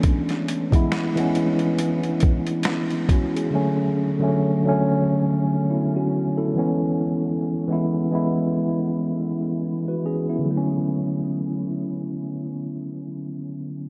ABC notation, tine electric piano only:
X:1
M:4/4
L:1/16
Q:"Swing 16ths" 1/4=69
K:Dlyd
V:1 name="Tine electric piano"
z12 [B,E]2 [CF] [CG]- | [CG] z8 z [B,E] [CF]2 [EA]2 z | z12 z [FB] [CG] [B,E]- | [B,E] z12 z3 |]
V:2 name="Tine electric piano" clef=bass
[E,G,B,C]3 [E,G,B,E]2 [E,G,B,C]6- [E,G,B,C] z4 | [D,F,A,C]3 [D,F,A,C]2 [D,F,A,C]6- [D,F,A,C] z2 [E,G,B,C]2- | [E,G,B,C]3 [E,G,B,E]2 [E,G,B,E]6- [E,G,B,E] z4 | [D,F,A,C]16 |]